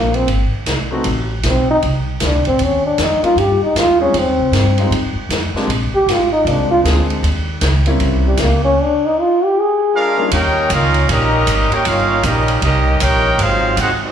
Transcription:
Already playing: A#1 A#3
0.14 C4, ride
0.28 G#1, ride
0.51 muted upright bass stroke
0.66 C2, snare, hi-hat pedal, ride
0.91 A3 B3 C4 D#4 F#4
1.04 A1, ride
1.43 B1, snare, hi-hat pedal, ride
1.50 C4
1.70 D#4
1.82 C2, ride
2.20 D2, snare, hi-hat pedal, ride
2.26 D4
2.34 C2
2.45 A1 C4, ride
2.59 D#2, ride
2.64 C#4
2.86 D4
2.98 F2, snare, hi-hat pedal, ride
3.02 D#4
3.23 G3 A#3 C#4 D#4 F4, muted upright bass stroke, ride
3.36 G2 G4, ride
3.61 D#4, muted upright bass stroke
3.75 D#2, snare, hi-hat pedal, ride
3.79 F4
3.99 G3 G#3 C4 C#4 D#4 G#4
4.13 F2, ride
4.18 C4
4.26 D#2
4.39 C2
4.52 G2, snare, hi-hat pedal, ride
4.78 G3 G#3 C4 D#4 F4, ride
4.90 G#2, ride
5.15 muted upright bass stroke
5.29 F2, snare, hi-hat pedal, ride
5.53 G#3 A#3 C4 D4 G4, muted upright bass stroke, snare
5.67 A#1, ride
5.93 G4, muted upright bass stroke
6.06 G#1, snare, hi-hat pedal, ride
6.12 F4
6.32 D#4
6.45 C2 G#3 A#3 C4 D4 F4, ride
6.70 F4, muted upright bass stroke
6.83 D2 G#3 A#3 C4 D4 G#4, snare, hi-hat pedal, ride
7.10 ride
7.23 D#2, ride
7.61 C#2, snare, hi-hat pedal, ride
7.86 G3 A#3 C4 C#4 E4, ride
8.00 C2, ride
8.28 G3
8.37 C#2, snare, hi-hat pedal, ride
8.42 A#3
8.64 C#4
8.83 D4
9.05 D#4
9.21 F4
9.44 G4
9.59 G#4
9.92 G#3 D4 F4 G#4 A#4 F5
10.17 G3 A#3 C#4 D#4 F4
10.31 D#2 A#3 C#4 D#4 G4 A#4 C#5 G5, ride
10.70 C#2 A#3 C#4 D#4 F4 A#4 C#5 F5, hi-hat pedal, ride
10.94 ride
11.09 A#1 G3 A#3 C#4 D#4 G4 A#4 D#5, ride
11.47 G#1, hi-hat pedal, ride
11.72 A#3 C#4 D#4 G4 A#4 C#5 G5, muted upright bass stroke, ride
11.85 G1 A#3 C#4 D#4 F4 A#4 C#5 F5, ride
12.23 A#1 G3 A#3 C#4 D#4 G4 A#4 D#5, hi-hat pedal, ride
12.48 ride
12.62 C2 G3 A#3 C#4 D#4 G4 A#4 D#5, ride
13.00 A#1 A#3 C#4 D#4 G4 A#4 C#5 G5, hi-hat pedal, ride
13.38 G#1 F#3 C4 D#4 F4 G#4 C5 F5, ride
13.77 G#2 C4 D#4 F#4, hi-hat pedal, ride
13.81 D#4 G#4 C5 F#5
14.02 F#3 C4 D#4 F#4 G#4 D#5

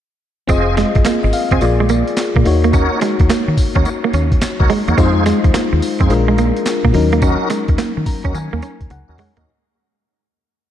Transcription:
0.48 F1 C4 F4 G#4 C5 D#5, kick, closed hi-hat, tambourine
0.77 G#3, snare, closed hi-hat, tambourine
0.95 G#1, muted clean electric guitar stroke, kick, closed hi-hat
1.05 A#3, muted fingered electric bass stroke, snare, clap, closed hi-hat, tambourine
1.23 G#1 D#5, muted clean electric guitar stroke
1.33 F5, open hi-hat, tambourine
1.51 C2 C4 F4 G#4 C5 D#5 G#5, kick, closed hi-hat
1.61 A#1 A#3 F4 G#4 D5, muted clean electric guitar stroke, closed hi-hat, tambourine
1.80 G#3
1.89 A#3, closed hi-hat, tambourine
2.08 closed hi-hat
2.17 snare, clap, closed hi-hat, tambourine
2.36 A#2 A#3, kick
2.45 D#2 A#3 D#4 F#4 C#5, muted clean electric guitar stroke, open hi-hat
2.64 A#3, closed hi-hat
2.73 C#4 D#4 F#4 A#4 C#5, kick, closed hi-hat, tambourine
3.01 G#3, snare, closed hi-hat, tambourine
3.19 D#2, muted clean electric guitar stroke, kick, closed hi-hat
3.30 A#3, muted fingered electric bass stroke, snare, clap, closed hi-hat, tambourine
3.48 D#3, muted clean electric guitar stroke
3.57 kick, open hi-hat, tambourine
3.75 D#2 C#4 D#4 F#4 A#4 C#5, kick, closed hi-hat
3.85 muted clean electric guitar stroke, closed hi-hat, tambourine
4.04 A#3
4.13 D#2 C#4, closed hi-hat, tambourine
4.32 kick, closed hi-hat
4.41 muted fingered electric bass stroke, muted clean electric guitar stroke, snare, clap, closed hi-hat, tambourine
4.59 C#2 D#4 F#4 A#4 C#5, kick
4.70 G#3, open hi-hat
4.87 E2 A#3 D#4 F#4 A#4 C#5, closed hi-hat
4.97 F2 G#3 C4 D#4 F4 G#4 C5, kick, closed hi-hat, tambourine
5.26 G#3, snare, closed hi-hat, tambourine
5.44 D#2, muted clean electric guitar stroke, kick, closed hi-hat
5.54 A#3, muted fingered electric bass stroke, snare, clap, closed hi-hat, tambourine
5.73 D#2, muted clean electric guitar stroke
5.82 open hi-hat, tambourine
6.00 F2 C4 D#4 F4 G#4 C5, kick, closed hi-hat
6.10 A#1 G#3 D4 F4 A#4, muted clean electric guitar stroke, closed hi-hat, tambourine
6.28 G#3
6.38 A#3, closed hi-hat, tambourine
6.57 closed hi-hat
6.66 snare, clap, closed hi-hat, tambourine
6.85 A#2 A#3, kick
6.93 D#2 F#3 C#4 D#4 A#4, muted clean electric guitar stroke, open hi-hat
7.12 A#3, closed hi-hat
7.22 C#4 D#4 F#4 A#4, kick, closed hi-hat, tambourine
7.50 G#3, snare, closed hi-hat, tambourine
7.68 D#2, muted clean electric guitar stroke, kick, closed hi-hat
7.78 A#3, muted fingered electric bass stroke, snare, clap, closed hi-hat, tambourine
7.97 D#3, muted clean electric guitar stroke
8.06 A#5, kick, open hi-hat, tambourine
8.24 D#2 C#4 D#4 F#4 A#4, kick, closed hi-hat
8.34 D#3 G#5, muted clean electric guitar stroke, closed hi-hat, tambourine
8.53 D#2 A#3
8.62 C#4, closed hi-hat, tambourine
8.81 D#2, kick, closed hi-hat
8.90 C#2 F#5, muted clean electric guitar stroke, closed hi-hat, high tom
9.08 D#2 C#4 D#4 F#4 A#4 G#5
9.18 G#3 C#5 F#5, mid tom, open hi-hat
9.36 D#2 A#3 C#4 D#4 F#4 A#4 D#5, closed hi-hat, floor tom

